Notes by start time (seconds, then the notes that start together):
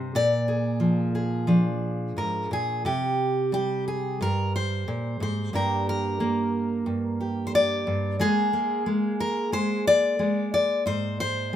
Already playing: G2 C3 C4 G4 C5
0.15 A#2 D5
0.48 G#4
0.80 F3
1.15 G#4
1.47 F3 D4
2.17 G#2 A#4
2.51 A#2 G#4
2.85 C3 G4
3.52 G3 G4
3.88 G#4
4.21 G2 A#4
4.56 C5
4.88 A#2
5.20 G#2 C5
5.53 G2 A#3 D4 G4 A#4
5.89 A#4
6.20 A#3
6.86 G2
7.21 G4
7.47 C5
7.55 D5
7.87 G2
8.20 G#3 A#3 G#4
8.53 A#3
8.86 G#3
9.20 A#4
9.52 G#3 C5
9.87 D5
10.19 G#3
10.54 D5
10.86 G#2 C5
11.20 C5